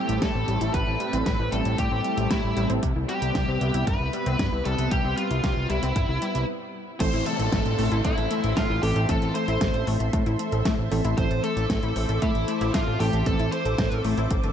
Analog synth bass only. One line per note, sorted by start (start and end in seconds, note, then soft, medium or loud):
0.09 0.19 A1 medium
0.22 0.32 A2 loud
0.35 0.45 A1 medium
0.48 0.58 A1 medium
0.61 0.71 A1 medium
0.74 0.84 A1 loud
0.87 0.97 A1 medium
1.13 1.23 A1 medium
1.26 1.36 A1 loud
1.39 1.49 A1 medium
1.52 1.63 A1 loud
1.66 1.76 A1 medium
1.79 1.89 A2 loud
1.92 2.02 A1 medium
2.18 2.28 A1 medium
2.31 2.41 A2 loud
2.44 2.54 A1 medium
2.57 2.67 A1 medium
2.70 2.80 A1 medium
2.83 2.93 C2 loud
2.96 3.06 C2 medium
3.22 3.32 C2 medium
3.35 3.45 C2 loud
3.48 3.58 C2 medium
3.61 3.71 C2 medium
3.74 3.84 C2 medium
3.87 3.97 G1 loud
4.00 4.10 C2 medium
4.26 4.36 C2 medium
4.39 4.49 G1 loud
4.53 4.63 C2 medium
4.66 4.76 C2 loud
4.79 4.89 C2 medium
4.92 5.02 C2 loud
5.05 5.15 C2 medium
5.31 5.41 C2 medium
5.44 5.54 C2 loud
5.57 5.67 C2 medium
5.70 5.80 C2 medium
5.83 5.93 C2 medium
5.96 6.06 G1 loud
6.09 6.19 C2 medium
6.35 6.45 C2 medium
7.00 7.10 A1 loud
7.13 7.23 A1 medium
7.39 7.49 A1 medium
7.53 7.63 A1 loud
7.66 7.76 A1 medium
7.79 7.89 A1 medium
7.92 8.02 A1 medium
8.05 8.15 A2 loud
8.18 8.28 A1 medium
8.44 8.54 A1 medium
8.57 8.67 A2 loud
8.70 8.80 A1 medium
8.83 8.93 A1 loud
8.96 9.06 A1 medium
9.09 9.19 A1 loud
9.22 9.32 A1 medium
9.48 9.58 A1 medium
9.61 9.71 A1 loud
9.74 9.84 A1 medium
9.87 9.97 A1 medium
10.00 10.10 A1 medium
10.13 10.23 A2 loud
10.26 10.36 A1 medium
10.52 10.62 A1 medium
10.65 10.76 A2 loud
10.79 10.89 A1 medium
10.91 11.02 A1 loud
11.05 11.15 A1 medium
11.18 11.28 A1 loud
11.31 11.41 A1 medium
11.57 11.67 A1 medium
11.70 11.80 A1 loud
11.83 11.93 A1 medium
11.96 12.06 A1 medium
12.09 12.19 A1 medium
12.22 12.32 A2 loud
12.35 12.45 A1 medium
12.61 12.71 A1 medium
12.74 12.84 A2 loud
12.87 12.97 A1 medium
13.00 13.10 A1 medium
13.13 13.23 A1 medium
13.26 13.36 A1 loud
13.39 13.49 A1 medium
13.65 13.76 A1 medium
13.79 13.89 A1 loud
13.92 14.02 A1 medium
14.05 14.15 A1 medium
14.18 14.28 A1 medium
14.31 14.41 A1 loud
14.44 14.53 G1 medium